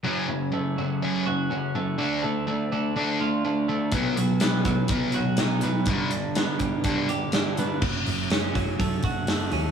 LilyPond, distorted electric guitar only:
\new Staff \with { instrumentName = "Distorted electric guitar" } { \clef bass \time 4/4 \key b \mixolydian \tempo 4 = 123 <fis, cis fis>8 <fis, cis>8 <fis, cis>8 <fis, cis>8 <fis, cis fis>8 <fis, cis>8 <fis, cis>8 <fis, cis>8 | <d a d'>8 <d a>8 <d a>8 <d a>8 <d a d'>8 <d a>8 <d a>8 <d a>8 | <b, fis b>8 <b, fis>8 <b, fis>8 <b, fis>8 <b, fis b>8 <b, fis>8 <b, fis>8 <b, fis>8 | <g, d g>8 <g, d>8 <g, d>8 <g, d>8 <g, d g>8 <g, d>8 <g, d>8 <g, d>8 |
r1 | }